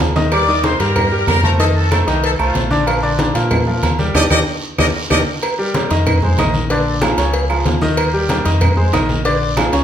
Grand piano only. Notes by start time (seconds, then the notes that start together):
Already playing: G#4
0.16 D#3 D#4 D#5
0.32 G3 G4 A#4
0.48 D#3 D#4 D#5
0.80 G3 G4 A#4
1.12 G3 G4 A#4
1.44 A3 A4 C5
1.59 D#3 D#4 D#5
1.91 A3 A4 C5
2.07 D#3 D#4 D#5
2.39 A3 A4 C5
2.70 D3 D4 D5
2.86 F3 F4 A#4
3.02 D3 D4 D5
3.35 F3 F4 A#4
3.67 F3 F4 A#4
3.99 G3 G4 A#4
4.15 D4 D#4 G4
4.30 D4 D#4 G4
4.78 D4 D#4 G4
5.10 D4 D#4 G4
5.58 G3 G4 A#4
5.75 G3 G4 A#4
5.91 D#3 D#4 D#5
6.23 G#3 G#4 C5
6.39 D#3 D#4 D#5
6.71 D3 D4 D5
7.02 F3 F4 G#4
7.18 C#3 C#4 C#5
7.49 F3 F4 G#4
7.82 D#3 D#4 D#5
8.13 G3 G4 A#4
8.29 G3 G4 A#4
8.45 D#3 D#4 D#5
8.77 G#3 G#4 C5
8.93 D#3 D#4 D#5
9.25 D3 D4 D5
9.57 F3 F4 G#4
9.72 C#3 C#4 C#5